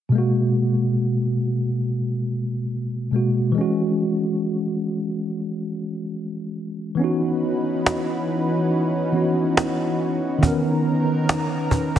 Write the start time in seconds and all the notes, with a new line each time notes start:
0.09 B2 G#3
0.15 A#3 F#4
3.11 B2 G#3 A#3
3.16 F#4
3.52 E3 G#3
3.58 C#4 F#4
6.95 E3 B3
6.99 E3 C#4 D#4 F#4 B4
7.04 F#4
7.86 cajon slap
9.12 E3 B3 C#4 D#4
9.17 F#4
9.57 cajon slap
10.38 D#3 B3
10.42 B3 C#4 A#4, cajon bass
10.47 A#4
11.29 cajon slap
11.71 cajon bass
11.96 cajon bass